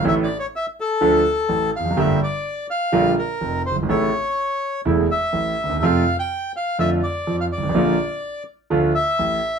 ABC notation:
X:1
M:4/4
L:1/16
Q:1/4=125
K:Dm
V:1 name="Bandoneon"
(3e2 d2 ^c2 e2 A8 f2 | e2 d4 f4 B4 c2 | ^c8 z2 e6 | f3 g3 f2 e2 d3 f d2- |
d6 z4 e6 |]
V:2 name="Grand piano" clef=bass
[A,,,A,,E,A,^CA]2 z6 [D,,D,F,A,DA]2 z2 [A,,,A,,]2 z/2 E,,/2 F,,/2 ^F,,/2 | [G,,,G,,D,G,B,G]2 z6 [B,,,B,,D,G,B,F]2 z2 [F,,,F,,]2 z/2 ^F,,,/2 G,,,/2 ^G,,,/2 | [A,,,A,,^C,E,A,E]2 z6 [E,,,E,,C,E,A,E]2 z2 [A,,,A,,]2 z/2 D,,/2 _E,,/2 =E,,/2 | [F,,C,F,A,F]2 z6 [F,,D,F,A,F]2 z2 [F,,F,]2 z/2 G,,,/2 ^G,,,/2 A,,,/2 |
[B,,,B,,D,F,B,F]2 z6 [D,,D,F,A,F]2 z2 [A,,,A,,]2 z2 |]